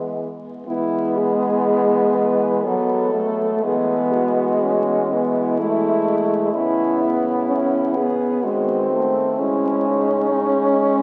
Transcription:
french horn
Already playing: E3 G#3 B3 E4
0.66 E3 G#3 B3 E4
1.17 G#4
2.15 B4
2.64 F#3 B3 A4
3.14 A3
3.63 E3 G#3 B3 G#4
4.12 F#4
4.62 C#4
5.11 B3 E4
5.60 G#3 A3
6.53 C#3 B3 C#4 E4
7.01 E4
7.47 C#4
7.95 B3 G#4
8.43 D#3 G#3 C4 F#4
8.91 A3
9.38 C#3 G#3 C#4 E4
9.86 D#4
10.32 G#3
10.74 C#4

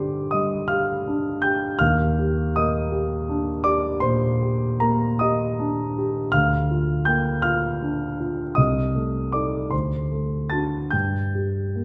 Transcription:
grand piano
Already playing: D3 G3 D4 G4 C5 D5 C6 D6
0.31 G3 D#5 D#6
0.68 G4 F5 F6
1.07 D4
1.42 G4 G5 G6
1.79 D#2 F5 F6
2.19 G4
2.56 A#3 D#5 D#6
2.92 G4
3.29 D4
3.64 G4 D5 D6
4.00 A#2 C5 C6
4.41 G4
4.80 A#3 A#4 A#5
5.19 G4 D#5 D#6
5.60 D4
5.98 G4
6.32 D2 F5 F6
6.71 F4
7.05 A#3 G5 G6
7.42 F4 F5 F6
7.82 D4
8.20 F4
8.55 C2 D#5 D#6
8.95 A3
9.32 D#4 A4 D5 D6
9.71 D2 C5 C6
10.12 A3
10.50 D4 F#4 A5 A6
10.90 G2 G5 G6
11.35 G4
11.76 A#3

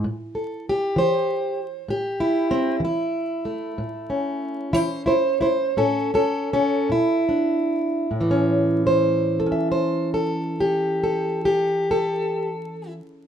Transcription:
steel-string acoustic guitar
Already playing: E4
0.04 A2
0.35 A4
0.69 G4
0.96 E3 C5
1.88 A2 G4
2.20 E4
2.51 C4
2.80 E3
2.85 E4
3.45 A3
3.78 A2
4.10 C#4
4.73 E3 E4 C5
5.06 E4 C5
5.41 E4 C5
5.77 A2 C#4 A4
6.14 C#4 A4
6.53 C#4 A4
6.89 A#2 E4
7.29 D4
8.11 A2
8.21 E3
8.31 C#4
8.87 C5
9.40 A4
9.46 C#4
9.52 E5
9.72 C5
10.14 A4
10.61 G4
11.04 A4
11.45 G4
11.91 A4

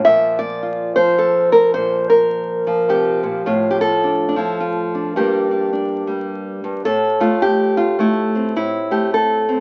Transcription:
nylon-string guitar
0.05 A#2 F3 E5
0.39 D5
0.63 F4
0.96 F3 C5
1.18 A4
1.52 A#4
1.74 A#2 C5
2.10 A#4
2.67 F3
2.89 C3 G4
3.23 A#2
3.46 A2 F4
3.71 G4
3.81 A4
4.04 D4
4.29 D4
4.36 F3 E4
4.60 F4
4.95 D4
5.16 G2 G3 A#3 D4 G4
5.51 D4
5.73 D4
6.07 G3
6.64 G2
6.85 A2 A4
7.20 A3 F4
7.42 G4
7.77 F4
7.99 A3 E4
8.35 C4
8.56 A2 E4
8.91 A3 G4
9.14 A4
9.49 C4

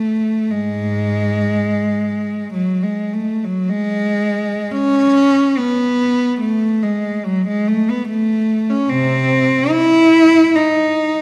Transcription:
cello
Already playing: A3
0.51 G#2 G#3
2.54 F#3
2.83 G#3
3.13 A3
3.45 F#3
3.70 G#3
4.72 C#4
5.59 B3
6.41 A3
6.82 G#3
7.25 F#3
7.48 G#3
7.68 A3
7.90 B3
8.09 A3
8.70 C#4
8.90 C3 C4
9.71 E4
10.56 D#4

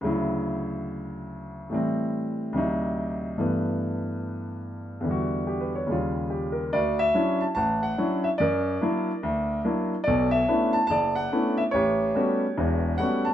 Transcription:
grand piano
0.01 D2 C#3 F#3
0.06 E4
1.70 A2 E3 G3
1.74 C4
2.53 D2 C3 F#3
2.57 D#4
3.38 G2 E3 A3 B3
5.01 E2 D3
5.07 G3 F#4
5.47 G4
5.61 B4
5.75 C#5
5.87 D#2 C#3 G3
5.92 F4
6.30 G4
6.52 A#4
6.73 D2 F#4 D5
6.99 E5
7.14 F#3 C#4 D4 E4
7.41 A5
7.55 A1 F#5 A5
7.83 F#5
7.98 F#3 C#4 D4 E4
8.24 E5
8.38 F#2 A#4 D5
8.81 F#3 A#3 D4 E4
9.23 D2
9.64 F#3 A#3 D4 E4
10.04 B1 B2 A4 D5
10.31 E5
10.48 A3 B3 C#4 D4 E4
10.73 A5
10.87 F#1 A5
10.91 D5
11.15 F#5
11.32 A3 B3 C#4 D4 E4
11.57 E5
11.71 A1 G4 C#5
12.15 G3 A3 B3 C#4 F#4
12.57 E1 E2
12.98 G3 A3 B3 C#4 F#4 F#5
13.25 A5

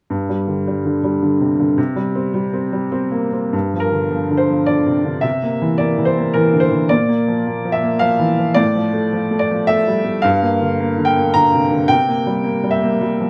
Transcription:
upright piano
0.10 G2
0.29 G3
0.48 D3
0.67 G3
0.85 D3
1.04 G3
1.22 D3
1.40 C3
1.60 D3
1.78 C3
1.96 G3
2.15 C4
2.34 G3
2.53 C4
2.73 G3
2.92 C4
3.12 A#3
3.33 C4
3.53 G2
3.74 F3
3.80 A#4
3.92 D3
4.11 F3
4.30 D3
4.37 C5
4.49 F3
4.66 D3 D5
4.87 C3
5.05 D3
5.21 C3 E5
5.43 A#3
5.62 E3
5.78 A#3 D5
5.98 E3
6.05 C5
6.18 A#3
6.34 E3 A#4
6.53 D3
6.60 C5
6.72 E3
6.89 A#2 D5
7.09 A#3
7.28 F3
7.47 A#3
7.65 F3
7.72 E5
7.84 A#3
7.99 F3 F5
8.19 E3
8.39 F3
8.54 A2 D5
8.75 F3
8.93 A3
9.13 F3
9.31 A3
9.39 D5
9.51 F3
9.67 A3 E5
9.88 G3
10.05 A3
10.22 G2 F5
10.42 A#3
10.61 D3
10.80 A#3
10.98 D3
11.05 G5
11.16 A#3
11.34 D3 A#5
11.54 C3
11.72 D3
11.88 C3 G5
12.08 A#3
12.27 G3
12.44 A#3
12.63 G3
12.71 E5
12.82 A#3
13.01 G3
13.20 F3

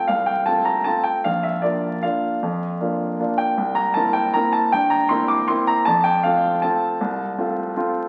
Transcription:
grand piano
0.07 C2 F5
0.26 G5
0.46 A3 C4 F4 A5
0.65 A#5
0.84 A3 C4 F4 A5
1.03 G5
1.24 A#1 F5
1.43 E5
1.62 A#3 D4 F4 D5
2.03 A#3 D4 F4 F5
2.43 F2
2.81 A#3 D4 F4
3.19 A#3 D4 F4
3.38 G5
3.58 C2
3.75 A#5
3.94 A#3 C4 E4 A5
4.13 G5
4.34 A#3 C4 E4 A#5
4.53 A5
4.72 G2 G5
4.90 A#5
5.09 A#3 C4 E4 C6
5.28 D6
5.48 A#3 C4 E4 C6
5.67 A#5
5.85 F2 A5
6.04 G5
6.23 A3 C4 F4 F5
6.62 A3 C4 F4 A5
7.01 C2
7.38 A3 C4 F4
7.76 A3 C4 F4

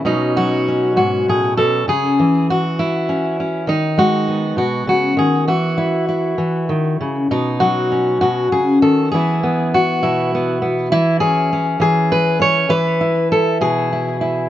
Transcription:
steel-string acoustic guitar
0.05 B2 F#3 C#4 D#4
0.36 F#3 F#4
0.68 C#4
0.96 G#2 F#4
1.28 A2 G#4
1.57 B2 A4
1.88 C#3 G#4
2.19 E3
2.50 F#4
2.79 E4
3.09 C#4
3.40 C#4
3.67 D#3 D#4
3.98 G#3 F#4
4.28 B3
4.57 B2 F#4
4.87 C#3 F#4
5.17 D#3 G#4
5.48 E3 F#4
5.78 E4
6.09 E4
6.38 E3
6.69 D#3
7.01 C#3
7.31 B2 D#4
7.60 F#3 F#4
7.92 C#4
8.21 B2 F#4
8.52 C#3 G#4
8.82 D#3 A4
9.12 E3 B3 E4 G#4
9.43 B3
9.74 F#4
10.03 B2 E4
10.35 B3
10.62 B3
10.92 E3 E4
11.20 C#4 G#4
11.53 C#4
11.80 E3 G#4
12.12 B4
12.40 C#4 C#5
12.69 E3 B4
13.01 E4
13.32 A4
13.61 B2 G#4
13.93 E4
14.21 E4

